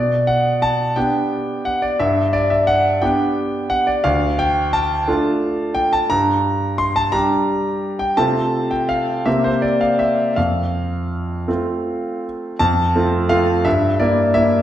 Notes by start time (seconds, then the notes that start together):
Already playing: B2 D5
0.27 F#5
0.62 A5
0.96 B3 D4 G4 G5
1.65 F#5
1.82 D5
2.00 G2 E5
2.33 D5
2.50 E5
2.67 F#5
3.02 B3 D4 G4 G5
3.70 F#5
3.87 D5
4.04 D2 F5
4.39 G5
4.73 A5
5.08 A3 D4 F4
5.75 G5
5.93 A5
6.10 G2 A#5
6.78 C6
6.96 A5
7.12 G3 D4 G4 A#5
7.99 G5
8.17 C3 A3 C4 F4 A5
8.71 G5
8.89 F5
9.26 C3 A#3 C4 G4 E5
9.44 C5
9.62 D5
9.81 F5
9.99 E5
10.36 F2 F5
11.48 A3 C4 F4
12.59 F2 A5
12.95 A3 C4 F4
13.29 A3 C4 F4 F5
13.65 G2 E5
14.00 A#3 E4 D5
14.34 A#3 E4 E5